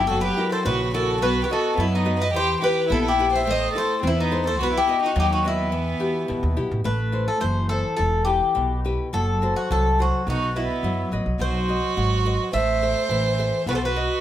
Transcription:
0.07 upright bass F#1, nylon-string guitar F#3, violin F#4, bouzouki A4
0.21 violin G4, bouzouki B4
0.37 nylon-string guitar E4 F#4 A#4
0.52 violin A4, bouzouki C5
0.65 upright bass A#1, nylon-string guitar C#3, violin F#4, bouzouki B4
0.94 nylon-string guitar E4 F#4 A#4, violin F#4, bouzouki A4
1.22 upright bass B1, nylon-string guitar B3, violin F#4, bouzouki B4
1.43 violin G4, bouzouki B4
1.49 violin F#4, nylon-string guitar F#4 B4 D#5, bouzouki A4
1.77 upright bass F#2, nylon-string guitar F#3, violin B3, bouzouki E4
1.92 violin B3, bouzouki D#4
2.05 nylon-string guitar F#4 B4 D#5
2.19 violin B4, bouzouki D#5
2.34 upright bass E2, nylon-string guitar E3, violin G4, bouzouki C5
2.61 nylon-string guitar E4 G4 B4, violin G4, bouzouki B4
2.88 upright bass A#1, nylon-string guitar B3, violin E4, bouzouki A4
3.03 violin E4
3.08 bouzouki G4
3.19 nylon-string guitar E4 G4 B4
3.32 violin C5, bouzouki E5
3.46 upright bass A1, nylon-string guitar A3, violin C5
3.51 bouzouki D#5
3.74 nylon-string guitar E4 A4 C5, violin A4
3.78 bouzouki C5
4.02 upright bass E2, nylon-string guitar E3, violin C4
4.07 bouzouki E4
4.18 violin B3, bouzouki D#4
4.31 nylon-string guitar E4 A4 C5
4.46 violin A4, bouzouki C5
4.59 upright bass B1, nylon-string guitar B3, violin F#4
4.63 bouzouki B4
4.74 violin E4, bouzouki G4
4.87 nylon-string guitar F#4 B4 D#5
5.02 violin D#4, bouzouki F#4
5.16 upright bass D#2, nylon-string guitar F#3, violin D#4
5.20 bouzouki G4
5.32 violin D#4, bouzouki F#4
5.44 violin B3, bouzouki E4, nylon-string guitar F#4 B4 D#5
5.72 upright bass E2, nylon-string guitar E3
6.00 nylon-string guitar E4 F#4 G4
6.28 upright bass E2, nylon-string guitar B2
6.43 upright bass D#2
6.57 upright bass B1, nylon-string guitar E4 F#4 G4
6.71 upright bass A1
6.84 upright bass A1, nylon-string guitar A3, bouzouki B4
7.12 nylon-string guitar E4 A4 C5
7.28 bouzouki A4
7.40 upright bass F#1, nylon-string guitar E3, bouzouki C5
7.69 nylon-string guitar E4 A4 C5, bouzouki A4
7.97 upright bass E1, nylon-string guitar E3, bouzouki A4
8.25 nylon-string guitar E4 G4 B4, bouzouki G4
8.55 upright bass B1, nylon-string guitar B2
8.85 nylon-string guitar E4 G4 B4
9.13 upright bass F#1, nylon-string guitar F#3, bouzouki A4
9.42 nylon-string guitar F#4 A4 C5
9.56 bouzouki F#4
9.70 upright bass C2, nylon-string guitar F#3, bouzouki A4
9.99 nylon-string guitar F#4 A4 C5, bouzouki F#4
10.27 upright bass B1, nylon-string guitar B3, violin D#4, bouzouki F#4
10.56 violin B3, bouzouki E4, nylon-string guitar F#4 B4 D#5
10.83 upright bass F#2, nylon-string guitar F#3
11.11 upright bass A1, nylon-string guitar F#4 B4 D#5
11.26 upright bass B1
11.39 upright bass B1, nylon-string guitar F#3, violin F#4, bouzouki C5
11.68 nylon-string guitar F#4 D#5
11.97 upright bass G#1, nylon-string guitar F#3
12.25 nylon-string guitar F#4 B4 D#5
12.53 upright bass A1, nylon-string guitar A3, violin C5, bouzouki E5
12.82 nylon-string guitar A4 C5 E5
13.09 upright bass A1, nylon-string guitar E3
13.39 nylon-string guitar A4 C5 E5
13.66 upright bass B1, nylon-string guitar B3, violin F#4, bouzouki B4
13.74 violin A4, bouzouki C5
13.85 violin F#4, bouzouki B4
13.96 nylon-string guitar F#4 B4 D#5

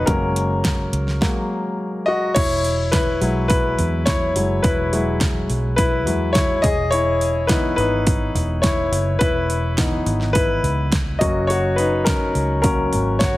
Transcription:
0.06 fingered electric bass F#1, grand piano F#3 G#3 A#3 C#4 A#4, kick, closed hi-hat
0.36 closed hi-hat
0.65 kick, snare, closed hi-hat
0.93 fingered electric bass C#2, closed hi-hat
1.08 snare
1.21 grand piano F#3 G#3 A#3, kick, snare
2.06 grand piano F#4 D#5
2.34 fingered electric bass E1, grand piano E4 C#5, kick, open hi-hat, crash
2.64 open hi-hat
2.92 grand piano E4 B4, kick, snare, open hi-hat
3.21 fingered electric bass B1, grand piano F#3 G#3 E4, open hi-hat
3.48 grand piano E4 B4, kick, open hi-hat
3.78 fingered electric bass E2, floor tom, open hi-hat
4.06 grand piano E4 C#5, kick, snare, open hi-hat
4.35 fingered electric bass F#1, grand piano F#3 G#3 E4, open hi-hat
4.62 fingered electric bass E1, grand piano E4 B4, kick, open hi-hat
4.92 grand piano F#3 G#3 E4, open hi-hat
5.21 kick, snare, open hi-hat
5.49 fingered electric bass B1, open hi-hat
5.76 grand piano E4 B4, kick, open hi-hat
6.06 fingered electric bass E2, grand piano F#3 G#3 E4, floor tom, open hi-hat
6.33 grand piano E4 C#5, kick, snare, open hi-hat
6.62 fingered electric bass E1, grand piano G#4 D#5, kick, open hi-hat
6.91 grand piano E4 C#5, open hi-hat
7.21 open hi-hat
7.47 grand piano E3 B3 D#4 E4 B4, kick, snare, open hi-hat
7.76 fingered electric bass G#1, grand piano D#4 B4, open hi-hat
8.07 kick, open hi-hat
8.35 fingered electric bass E1, floor tom, open hi-hat
8.62 grand piano E4 C#5, kick, snare, open hi-hat
8.92 fingered electric bass F#1, open hi-hat
9.19 fingered electric bass E1, grand piano E4 B4, kick, open hi-hat
9.50 open hi-hat
9.78 grand piano E3 B3 D#4, kick, snare, open hi-hat
10.06 fingered electric bass G#1, open hi-hat
10.21 snare
10.33 grand piano E4 B4, kick, open hi-hat
10.63 fingered electric bass C#2, floor tom, open hi-hat
10.92 kick, snare, open hi-hat
11.19 fingered electric bass F#1, grand piano F#3 A#3 C#4 F#4 D#5, kick, open hi-hat
11.47 grand piano F#4 C#5, open hi-hat
11.76 grand piano D#4 B4, open hi-hat
12.04 grand piano C#4 A#4, kick, snare, open hi-hat
12.35 fingered electric bass C#2, open hi-hat
12.62 grand piano F#3 A#3 C#4 A#4, kick, open hi-hat
12.92 fingered electric bass G#1, floor tom, open hi-hat
13.19 grand piano F#4 C#5, kick, snare, open hi-hat

